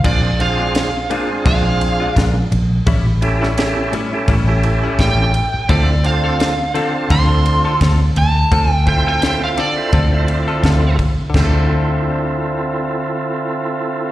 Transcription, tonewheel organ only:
X:1
M:4/4
L:1/16
Q:"Swing 16ths" 1/4=85
K:Dm
V:1 name="Tonewheel organ"
[CDF_A] z [CDFA]3 z [CDFA]6 z4 | z2 [^CEGA] z [CEGA]2 z [CEGA] z [CEGA]4- [CEGA] z2 | [CEFA] z [CDFA]3 z [CDFA]6 z4 | z2 [CEFA] z [CEFA]2 z [CEFA] z [CEFA]4- [CEFA] z2 |
[CEFA]16 |]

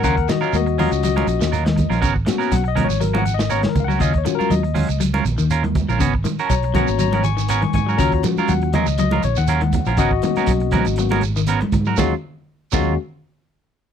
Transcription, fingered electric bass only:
X:1
M:4/4
L:1/16
Q:"Swing 16ths" 1/4=121
K:Ebm
V:1 name="Fingered electric bass" clef=bass
E,,2 z2 E,,3 D,,3 B,,, E,,4 B,,, | A,,,2 z2 C,,3 A,,,6- A,,, D,,2 | E,,2 z2 E,,3 D,,3 B,,, E,,4 B,,, | A,,,2 z2 C,,3 A,,,6- A,,, A,,2 |
E,,2 z2 E,,3 D,,3 B,,, E,,4 B,,, | A,,,2 z2 C,,3 A,,,6- A,,, A,,2 | E,, z4 z E,,2 z8 |]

